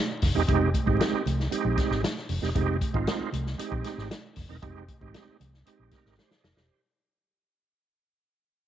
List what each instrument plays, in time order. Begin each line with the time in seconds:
0.10 muted conga
0.22 fingered electric bass F1, kick, snare, open hi-hat, low conga
0.35 fingered electric bass E1, tonewheel organ G#3 C4 D#4 G4
0.47 fingered electric bass F1, tonewheel organ G#3 C4 D#4 G4, kick, closed hi-hat, muted conga
0.61 muted conga
0.74 kick, closed hi-hat, high conga
0.86 fingered electric bass G#1, tonewheel organ G#3 C4 D#4 G4, kick
1.00 snare, closed hi-hat, high conga
1.12 muted fingered electric bass stroke, muted conga
1.26 fingered electric bass C2, closed hi-hat, high conga, low conga
1.40 snare
1.51 tonewheel organ G3 C4 D#4 G4, closed hi-hat
1.57 tonewheel organ G#3
1.65 fingered electric bass A#1, muted conga
1.77 kick, snare, closed hi-hat, high conga
1.91 fingered electric bass G#1, snare
2.03 snare, closed hi-hat, high conga
2.17 snare, muted conga
2.29 fingered electric bass F1, open hi-hat, low conga
2.42 fingered electric bass E1, tonewheel organ G#3 C4 D#4 G4, snare
2.55 fingered electric bass F1, tonewheel organ G#3 C4 D#4 G4, kick, closed hi-hat
2.81 kick, closed hi-hat, high conga
2.93 fingered electric bass G#1, tonewheel organ G#3 C4 D#4 F4, kick
3.07 snare, closed hi-hat, muted conga, high conga
3.20 muted fingered electric bass stroke, muted conga
3.32 fingered electric bass C2, closed hi-hat, high conga, low conga
3.46 snare
3.58 tonewheel organ G#3 C4 D#4 G4, closed hi-hat
3.72 fingered electric bass A#1, kick
3.84 snare, closed hi-hat, high conga
3.98 fingered electric bass G#1, snare
4.10 snare, closed hi-hat, muted conga, high conga
4.36 fingered electric bass F1, kick, snare, open hi-hat, low conga
4.49 fingered electric bass E1, tonewheel organ G#3 C4 D#4 A#4
4.62 fingered electric bass F1, tonewheel organ G#3 C4 D#4 G4, kick, closed hi-hat
4.76 muted conga
4.88 kick, closed hi-hat, high conga
5.01 fingered electric bass G#1, tonewheel organ G#3 C4 D#4 G4, kick
5.14 snare, closed hi-hat, high conga
5.28 muted fingered electric bass stroke, muted conga
5.40 fingered electric bass C2, closed hi-hat, high conga, low conga
5.54 snare
5.66 tonewheel organ G#3 C4 D#4 G4, muted fingered electric bass stroke, closed hi-hat, muted conga
5.79 fingered electric bass A#1
5.91 tonewheel organ A#4, kick, snare, closed hi-hat, high conga
6.06 fingered electric bass G#1, snare
6.17 tonewheel organ G4 C5, snare, high conga
6.31 tonewheel organ G#4 D5, snare, muted conga
6.44 fingered electric bass F1, tonewheel organ A#4 D#5, snare, low conga
6.57 fingered electric bass E1, tonewheel organ G4 C5, snare